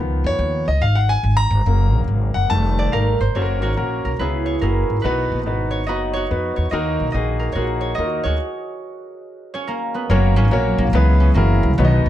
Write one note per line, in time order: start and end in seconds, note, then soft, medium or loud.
0.00 0.21 C#2 medium
0.00 0.64 D#3 medium
0.00 0.64 F3 soft
0.00 0.64 B3 medium
0.24 0.37 F2 medium
0.24 0.65 C#5 loud
0.39 0.63 D#2 medium
0.68 0.80 C#2 medium
0.68 0.81 D#5 medium
0.81 1.17 G#1 medium
0.81 0.96 F5 medium
0.95 1.10 F#5 medium
1.09 1.39 G#5 medium
1.23 1.47 G#1 medium
1.37 1.99 A#5 loud
1.51 1.63 G1 loud
1.66 1.94 F#1 loud
1.66 2.46 C#3 soft
1.66 2.47 F#3 soft
1.66 2.47 A#3 medium
1.94 2.06 A#1 medium
2.08 2.31 G#1 medium
2.34 2.48 F#1 medium
2.34 2.48 F#5 medium
2.50 2.86 F1 medium
2.50 3.17 D#3 medium
2.50 3.17 G3 soft
2.50 3.17 A3 medium
2.50 2.93 A5 loud
2.79 3.41 D5 medium
2.92 3.16 G#1 medium
2.92 3.36 A#4 medium
2.92 3.18 F5 medium
3.20 3.33 G1 medium
3.20 3.41 C5 medium
3.35 3.62 F#1 medium
3.35 3.69 A#3 medium
3.35 3.69 C#4 medium
3.35 3.62 F#4 medium
3.35 3.69 F#4 medium
3.35 3.42 A4 medium
3.35 3.62 A#4 medium
3.35 3.61 C#5 medium
3.42 3.72 A#4 medium
3.62 3.74 G#1 medium
3.62 5.03 F#4 medium
3.62 4.05 A#4 medium
3.62 4.45 C#5 medium
3.77 4.00 A#1 medium
3.77 4.11 A#3 medium
3.77 4.11 C#4 medium
3.77 4.11 F#4 medium
3.77 4.11 A#4 medium
4.05 4.17 B1 medium
4.05 4.25 A#4 medium
4.19 4.55 C#2 medium
4.19 4.59 C#3 medium
4.19 4.53 B3 medium
4.19 4.54 C#4 medium
4.19 4.63 E4 medium
4.19 4.54 E4 medium
4.19 4.54 G#4 medium
4.19 6.49 G#4 medium
4.19 4.67 B4 medium
4.46 5.70 C#5 medium
4.61 4.85 F#1 medium
4.61 4.96 A#3 medium
4.61 7.52 C#4 medium
4.61 4.96 E4 medium
4.61 5.10 E4 medium
4.61 4.96 F#4 medium
4.61 4.96 G#4 medium
4.61 5.08 A#4 medium
4.90 5.02 G#1 medium
5.02 5.27 B1 medium
5.02 5.70 B2 medium
5.02 5.38 B3 medium
5.02 7.74 D#4 medium
5.02 5.38 D#4 medium
5.02 5.89 F#4 medium
5.02 5.38 F#4 medium
5.02 5.88 B4 medium
5.02 5.38 B4 medium
5.32 5.46 A#1 medium
5.46 5.88 G#1 medium
5.46 5.80 B3 medium
5.46 5.80 D#4 medium
5.46 5.80 F#4 medium
5.46 5.80 B4 medium
5.71 6.13 C#5 medium
5.87 6.24 F#1 medium
5.87 6.22 B3 medium
5.87 6.22 D#4 medium
5.87 6.22 F#4 medium
5.87 6.16 F#4 medium
5.87 6.79 B4 medium
5.87 6.71 D#5 medium
5.87 6.23 A#5 medium
6.13 6.72 F#4 medium
6.13 6.56 C#5 medium
6.30 6.54 F2 medium
6.30 6.64 B3 medium
6.30 6.65 D#4 medium
6.30 6.65 F#4 medium
6.30 6.65 B4 medium
6.56 6.70 E2 medium
6.56 7.52 C#5 medium
6.71 6.96 D#2 medium
6.71 7.39 D#3 medium
6.71 7.06 A#3 medium
6.71 7.07 D#4 medium
6.71 7.55 F#4 medium
6.71 7.07 F#4 medium
6.71 7.39 A#4 medium
6.71 7.07 A#4 medium
6.71 7.12 D#5 medium
7.00 7.12 B1 medium
7.12 7.50 A#1 medium
7.12 7.48 A#3 medium
7.12 7.48 D#4 medium
7.12 7.49 F#4 medium
7.12 7.49 G#4 medium
7.12 7.95 D#5 medium
7.39 7.45 A#4 medium
7.52 7.92 A#1 medium
7.52 7.90 A#3 medium
7.52 7.91 D#4 medium
7.52 8.25 F#4 medium
7.52 9.67 A#4 medium
7.52 7.80 C#5 medium
7.57 7.63 F4 soft
7.57 7.91 G#4 medium
7.62 7.93 F#4 medium
7.81 8.23 C#5 medium
7.95 8.22 D#2 medium
7.95 8.33 A#3 medium
7.95 9.73 D#5 medium
7.99 8.33 D#4 soft
7.99 8.06 F4 soft
7.99 8.33 A#4 medium
8.04 8.36 F#4 medium
8.24 8.38 D2 medium
8.24 10.69 F#4 medium
8.24 10.54 G#4 medium
8.24 9.53 C#5 medium
9.54 10.10 C#4 medium
9.54 11.45 C#5 medium
9.67 10.00 A#3 medium
9.67 10.00 A#4 medium
9.94 10.16 B3 medium
9.94 10.16 B4 medium
10.10 10.37 F#1 medium
10.10 10.36 F#3 medium
10.10 10.44 A#3 medium
10.10 10.37 A#3 medium
10.10 10.44 C#4 medium
10.10 10.36 C#4 medium
10.10 10.44 F#4 medium
10.10 10.44 A#4 medium
10.10 10.44 C#5 medium
10.36 10.49 G#1 medium
10.36 10.99 F#3 medium
10.36 10.78 A#3 medium
10.36 11.20 C#4 medium
10.51 10.75 A#1 medium
10.51 10.86 A#3 medium
10.51 10.86 C#4 medium
10.51 10.86 F#4 medium
10.51 10.86 A#4 medium
10.51 10.86 C#5 medium
10.78 10.91 B1 loud
10.78 10.99 A#3 medium
10.93 11.29 C#2 loud
10.93 11.34 C#3 medium
10.93 11.34 E3 medium
10.93 11.41 G#3 medium
10.93 11.40 B3 medium
10.93 11.28 B3 medium
10.93 11.28 C#4 medium
10.93 11.28 E4 medium
10.93 11.29 G#4 medium
10.93 11.29 B4 medium
11.20 12.09 C#4 medium
11.34 11.59 F#1 loud
11.34 11.83 C#3 medium
11.34 11.83 E3 medium
11.34 11.84 A#3 medium
11.34 11.70 C#4 medium
11.34 11.70 E4 medium
11.34 11.70 F#4 medium
11.34 11.71 G#4 medium
11.34 11.71 A#4 medium
11.63 11.76 C2 loud
11.78 12.01 B1 loud
11.78 12.09 B2 medium
11.78 12.09 D#3 medium
11.78 12.09 F#3 medium
11.78 12.09 B3 medium
11.78 12.09 D#4 medium
11.78 12.09 F#4 medium
11.78 12.09 B4 medium
11.78 11.85 C#5 medium
11.85 12.09 D#5 medium
12.06 12.09 D#2 medium